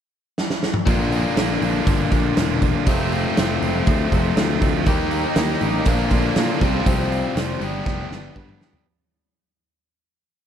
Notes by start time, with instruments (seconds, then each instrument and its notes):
0.38 snare
0.50 snare
0.63 snare
0.74 mid tom
0.87 picked electric bass A#1, overdriven electric guitar A#2 D3 A#3 D4 F4, kick, open hi-hat
1.12 overdriven electric guitar A#3 D4 F4, open hi-hat
1.36 picked electric bass A#1, overdriven electric guitar A#2 D3 A#3 D4 F4, snare, open hi-hat
1.62 picked electric bass A#1, overdriven electric guitar A#3 D4 F4, open hi-hat
1.86 picked electric bass G1, overdriven electric guitar D3 A#3 D4 F4, kick, open hi-hat
2.11 picked electric bass A#1, overdriven electric guitar A#2 D3 A#3 D4 F4, kick, open hi-hat
2.37 picked electric bass E1, overdriven electric guitar D3 A#3 D4 F4, snare, open hi-hat
2.62 overdriven electric guitar A#3 D4 F4, kick, open hi-hat
2.86 picked electric bass F1, overdriven electric guitar F2 C3 F3 A3 C4 F4, kick, open hi-hat
3.12 overdriven electric guitar F3 A3 C4 F4, open hi-hat
3.37 picked electric bass F1, overdriven electric guitar F2 C3 F3 A3 C4 F4, snare, open hi-hat
3.62 picked electric bass F1, overdriven electric guitar F3 A3 C4 F4, open hi-hat
3.87 picked electric bass D2, overdriven electric guitar F3 A3 C4 F4, kick, open hi-hat
4.11 picked electric bass F1, overdriven electric guitar F2 C3 F3 A3 C4 F4, kick, open hi-hat
4.36 picked electric bass D2, overdriven electric guitar F3 A3 C4 F4, snare, open hi-hat
4.60 overdriven electric guitar F3 A3 C4 F4, kick, open hi-hat
4.86 picked electric bass D#2, overdriven electric guitar D#3 A#3 D#4 G4, steel-string acoustic guitar G3 A#4, kick, open hi-hat
5.11 overdriven electric guitar A#3 D#4 G4, open hi-hat
5.23 steel-string acoustic guitar A#3 D#4 A#4
5.36 picked electric bass D#2, overdriven electric guitar D#3 A#3 D#4 G4, steel-string acoustic guitar G3 A#4, snare, open hi-hat
5.61 picked electric bass A1, steel-string acoustic guitar G3 A#4, overdriven electric guitar A#3 D#4 G4, open hi-hat
5.73 steel-string acoustic guitar A#3 D#4 A#4
5.85 picked electric bass A#1, overdriven electric guitar A#2 D3 A#3 D4 F4, steel-string acoustic guitar F3 A#4, kick, open hi-hat
6.10 picked electric bass A#1, overdriven electric guitar A#2 D3 A#3 D4 F4, steel-string acoustic guitar F3 A#4, kick, open hi-hat
6.36 steel-string acoustic guitar A#2 F3 A#4, picked electric bass A#2, overdriven electric guitar D3 A#3 D4 F4, snare, open hi-hat
6.61 picked electric bass C2, overdriven electric guitar C3 F3 G3 C4 F4, steel-string acoustic guitar G4, kick, open hi-hat
6.73 steel-string acoustic guitar C4 F4 G4
6.86 picked electric bass C2, overdriven electric guitar C3 F3 G3 C4 F4, steel-string acoustic guitar G4, kick, open hi-hat
7.11 overdriven electric guitar G3 C4 F4, open hi-hat
7.23 steel-string acoustic guitar C4 F4 G4
7.35 picked electric bass F1, overdriven electric guitar C3 F3 G3 C4 F4, steel-string acoustic guitar G4, snare, open hi-hat
7.60 picked electric bass G1, overdriven electric guitar G2 D3 G3 B3 D4 G4, open hi-hat
7.64 overdriven electric guitar G4
7.85 picked electric bass F1, overdriven electric guitar G3 B3 D4 G4, kick, snare
8.10 picked electric bass G1, overdriven electric guitar G2 D3 G3 B3 D4 G4, snare
8.35 picked electric bass G2, steel-string acoustic guitar G2 D3, overdriven electric guitar G3 B3 D4 G4, kick
8.49 mid tom
8.60 overdriven electric guitar G3 B3 D4 G4, snare
8.73 steel-string acoustic guitar G3 B3 D4 G4, floor tom